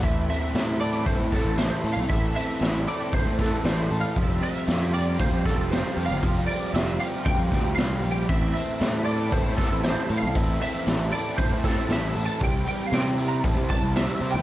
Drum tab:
HH |oooooooo|oooooooo|oooooooo|oooooooo|
SD |--o--oo-|--o--oo-|--o--oo-|--o--oo-|
BD |o---oo--|o---oo--|o---oo--|o---oo--|

HH |oooooooo|oooooooo|oooooooo|
SD |--o--oo-|--o--oo-|--o---o-|
BD |o---oo--|o---oo--|o---oo--|